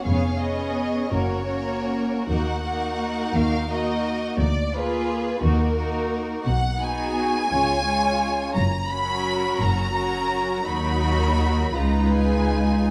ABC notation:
X:1
M:6/8
L:1/8
Q:3/8=57
K:F#
V:1 name="Violin section"
e d2 c3 | f3 e d2 | =d B2 A3 | f g4- g |
a b2 a3 | b3 a g2 |]
V:2 name="Violin section"
[Gc] [Gc]2 [FA] [FA]2 | [FA] [FA]3 [FA]2 | z [EG]2 F F2 | z [FG]2 [Ec] [Ec]2 |
z [FA]3 [FA]2 | [FA]3 [EB]3 |]
V:3 name="Viola section"
[B,C] [B,C]2 [A,C] [A,C]2 | [A,D] [A,D]3 [A,D]2 | z [A,E]2 [A,D] [A,D]2 | z [B,D]2 [G,C] [G,C]2 |
z [F,C]3 [F,C]2 | [F,D]3 [G,D]3 |]
V:4 name="Cello section" clef=bass
E,,3 F,,3 | D,,3 D,,3 | =D,,3 ^D,,3 | B,,3 C,3 |
F,,3 F,,3 | D,,3 C,,3 |]
V:5 name="Double bass section" clef=bass
E,,,3 F,,,3 | D,,3 D,,3 | =D,,3 ^D,,3 | B,,,3 C,,3 |
F,,,3 F,,,3 | D,,3 C,,3 |]